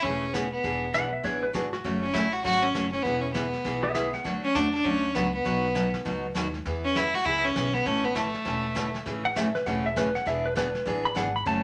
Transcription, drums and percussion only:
0.04 brush sweep, kick, snare
0.34 kick, snare, hi-hat pedal
0.64 brush sweep, kick, snare
0.94 kick, snare, hi-hat pedal
1.24 brush sweep, kick, snare
1.54 kick, snare, hi-hat pedal
1.73 snare
1.84 brush sweep, kick, snare
2.15 kick, snare, hi-hat pedal
2.45 brush sweep, kick, snare
2.75 kick, snare, hi-hat pedal
2.93 snare
3.05 brush sweep, kick, snare
3.35 kick, snare, hi-hat pedal
3.53 snare
3.65 brush sweep, kick, snare
3.95 kick, snare, hi-hat pedal
4.13 snare
4.25 brush sweep, kick, snare
4.55 kick, snare, hi-hat pedal
4.74 snare
4.85 brush sweep, kick, snare
5.15 kick, snare, hi-hat pedal
5.45 brush sweep, kick, snare
5.75 kick, snare, hi-hat pedal
5.94 snare
6.05 brush sweep, kick, snare
6.35 kick, snare, hi-hat pedal
6.54 snare
6.65 brush sweep, kick, snare
6.96 kick, snare, hi-hat pedal
7.14 snare
7.26 brush sweep, kick, snare
7.36 snare
7.46 snare
7.56 kick, snare, hi-hat pedal
7.74 snare
7.86 brush sweep, kick, snare
8.16 kick, snare, hi-hat pedal
8.34 snare
8.46 brush sweep, kick, snare
8.76 kick, snare, hi-hat pedal
8.94 snare
9.06 brush sweep, kick, snare
9.36 kick, snare, hi-hat pedal
9.55 snare
9.66 brush sweep, kick, snare
9.96 kick, snare, hi-hat pedal
10.15 snare
10.27 brush sweep, kick, snare
10.56 kick, snare, hi-hat pedal
10.75 snare
10.86 brush sweep, kick, snare
11.16 kick, snare, hi-hat pedal
11.46 brush sweep, kick, snare

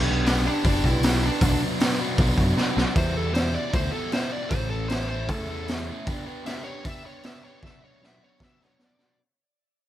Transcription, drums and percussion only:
0.26 snare, open hi-hat
0.65 kick, open hi-hat
0.84 kick
1.03 snare, open hi-hat
1.41 kick, open hi-hat
1.80 snare, open hi-hat
1.91 snare
2.18 kick, open hi-hat
2.38 kick
2.58 snare
2.78 snare
2.96 kick, open hi-hat
3.35 snare, open hi-hat
3.73 kick, open hi-hat
4.12 snare, open hi-hat
4.51 kick, open hi-hat
4.89 snare, open hi-hat
5.29 kick, open hi-hat
5.68 snare, open hi-hat
6.07 kick, open hi-hat
6.46 snare, open hi-hat
6.85 kick, open hi-hat
7.23 snare, open hi-hat
7.63 kick, snare
8.03 snare
8.40 kick, snare
8.61 snare
8.79 snare
8.99 snare

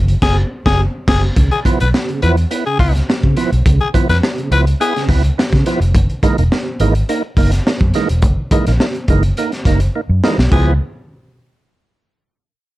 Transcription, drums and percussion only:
0.08 closed hi-hat
0.22 kick, snare, crash
0.66 kick, snare
1.08 kick, snare, crash
1.36 kick, closed hi-hat
1.51 closed hi-hat
1.65 kick, closed hi-hat
1.80 closed hi-hat
1.94 snare
2.08 closed hi-hat
2.22 closed hi-hat
2.37 closed hi-hat
2.51 closed hi-hat
2.79 kick, open hi-hat
2.95 snare, closed hi-hat
3.10 snare
3.23 kick
3.37 snare, closed hi-hat
3.52 closed hi-hat
3.66 kick, closed hi-hat
3.94 kick, closed hi-hat
4.09 snare, closed hi-hat
4.23 snare
4.38 closed hi-hat
4.52 closed hi-hat
4.67 closed hi-hat
4.81 closed hi-hat
4.96 snare, closed hi-hat
5.09 kick, snare, open hi-hat
5.24 closed hi-hat
5.39 snare
5.52 kick, snare, closed hi-hat
5.66 snare, closed hi-hat
5.82 closed hi-hat
5.95 kick, closed hi-hat
6.09 closed hi-hat
6.23 kick, closed hi-hat
6.38 closed hi-hat
6.52 snare
6.80 closed hi-hat
6.95 closed hi-hat
7.09 closed hi-hat
7.37 kick, open hi-hat
7.52 snare, closed hi-hat
7.67 snare
7.79 kick, closed hi-hat
7.94 snare, closed hi-hat
8.09 closed hi-hat
8.22 kick, closed hi-hat
8.51 kick, closed hi-hat
8.66 snare, closed hi-hat
8.80 snare
8.95 closed hi-hat
9.08 kick, closed hi-hat
9.23 closed hi-hat
9.37 closed hi-hat
9.52 snare, closed hi-hat
9.65 kick, snare, closed hi-hat
9.80 closed hi-hat
10.24 snare
10.39 snare
10.52 kick, crash

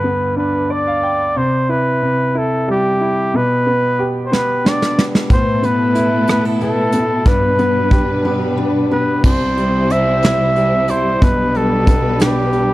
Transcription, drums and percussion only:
4.33 snare
4.66 snare
4.82 snare
4.99 snare
5.15 snare
5.30 kick, closed hi-hat
5.63 closed hi-hat
5.95 closed hi-hat
6.27 cross-stick, closed hi-hat
6.61 closed hi-hat
6.92 closed hi-hat
7.26 kick, closed hi-hat
7.59 closed hi-hat
7.91 kick, closed hi-hat
9.24 kick, crash
9.57 closed hi-hat
9.90 closed hi-hat
10.23 snare, closed hi-hat
10.56 closed hi-hat
10.88 closed hi-hat
11.22 kick, closed hi-hat
11.55 closed hi-hat
11.87 kick, closed hi-hat
12.20 snare, closed hi-hat
12.53 closed hi-hat

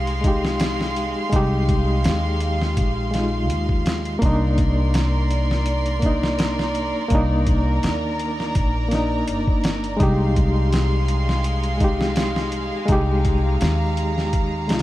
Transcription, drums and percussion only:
0.07 closed hi-hat
0.24 kick, closed hi-hat
0.45 snare
0.60 snare, closed hi-hat
0.81 snare
0.96 closed hi-hat
1.32 kick, closed hi-hat
1.69 kick, closed hi-hat
2.04 snare, closed hi-hat
2.40 closed hi-hat
2.62 snare
2.77 kick, closed hi-hat
3.14 snare, closed hi-hat
3.50 closed hi-hat
3.69 kick
3.86 snare, closed hi-hat
4.05 closed hi-hat
4.22 kick, closed hi-hat
4.58 kick, closed hi-hat
4.94 snare, closed hi-hat
5.31 closed hi-hat
5.51 snare
5.66 closed hi-hat
5.86 closed hi-hat
6.02 kick, closed hi-hat
6.23 snare
6.39 snare, closed hi-hat
6.59 snare
6.75 closed hi-hat
7.10 kick, closed hi-hat
7.47 kick, closed hi-hat
7.83 snare, closed hi-hat
8.19 closed hi-hat
8.40 snare
8.55 kick, closed hi-hat
8.91 snare, closed hi-hat
9.28 closed hi-hat
9.47 kick
9.64 snare, closed hi-hat
9.84 closed hi-hat
10.00 kick, closed hi-hat
10.36 kick, closed hi-hat
10.72 snare, closed hi-hat
11.08 closed hi-hat
11.29 snare
11.44 closed hi-hat
11.64 closed hi-hat
11.80 kick, closed hi-hat
12.01 snare
12.16 snare, closed hi-hat
12.36 snare
12.52 closed hi-hat
12.88 kick, closed hi-hat
13.25 kick, closed hi-hat
13.61 snare, closed hi-hat
13.97 closed hi-hat
14.18 snare
14.33 kick, closed hi-hat
14.69 snare, closed hi-hat
14.79 closed hi-hat

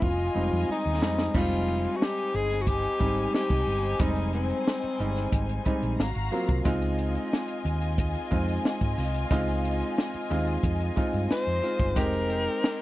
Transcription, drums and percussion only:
0.02 kick
1.02 snare
1.19 snare
1.34 kick, crash
1.51 closed hi-hat
1.68 closed hi-hat
1.84 closed hi-hat
2.02 snare
2.17 closed hi-hat
2.34 closed hi-hat
2.50 snare, closed hi-hat
2.67 kick, closed hi-hat
2.84 closed hi-hat
3.00 kick, closed hi-hat
3.17 closed hi-hat
3.34 snare
3.50 kick, closed hi-hat
3.67 open hi-hat
3.83 closed hi-hat
3.99 kick, closed hi-hat
4.16 closed hi-hat
4.33 closed hi-hat
4.49 closed hi-hat
4.68 snare
4.82 closed hi-hat
5.00 closed hi-hat
5.16 snare, closed hi-hat
5.32 kick, closed hi-hat
5.49 closed hi-hat
5.65 kick, closed hi-hat
5.82 closed hi-hat
6.00 snare
6.15 closed hi-hat
6.32 open hi-hat
6.49 kick, closed hi-hat
6.65 kick, closed hi-hat
6.82 closed hi-hat
6.99 closed hi-hat
7.15 closed hi-hat
7.33 snare
7.48 closed hi-hat
7.66 closed hi-hat
7.81 closed hi-hat
7.98 kick, closed hi-hat
8.15 closed hi-hat
8.31 kick, closed hi-hat
8.48 closed hi-hat
8.65 snare
8.81 kick, closed hi-hat
8.98 snare, open hi-hat
9.14 closed hi-hat
9.31 kick, closed hi-hat
9.47 closed hi-hat
9.64 closed hi-hat
9.80 closed hi-hat
9.98 snare
10.13 closed hi-hat
10.31 closed hi-hat
10.47 closed hi-hat
10.63 kick, closed hi-hat
10.80 closed hi-hat
10.97 kick, closed hi-hat
11.13 closed hi-hat
11.31 snare
11.46 closed hi-hat
11.63 snare, closed hi-hat
11.80 kick, closed hi-hat
11.96 kick, closed hi-hat
12.13 closed hi-hat
12.30 closed hi-hat
12.46 closed hi-hat
12.64 snare
12.79 closed hi-hat

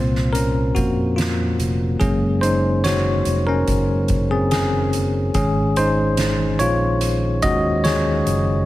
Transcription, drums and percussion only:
0.15 snare
0.35 closed hi-hat
0.76 kick, closed hi-hat
1.18 snare, closed hi-hat
1.60 closed hi-hat
2.01 kick, closed hi-hat
2.43 closed hi-hat
2.84 snare, closed hi-hat
3.25 closed hi-hat
3.68 kick, closed hi-hat
4.08 kick, closed hi-hat
4.51 snare, closed hi-hat
4.93 closed hi-hat
5.34 kick, closed hi-hat
5.76 closed hi-hat
6.17 snare, closed hi-hat
6.59 closed hi-hat
7.01 closed hi-hat
7.42 kick, closed hi-hat
7.85 snare, closed hi-hat
8.27 closed hi-hat

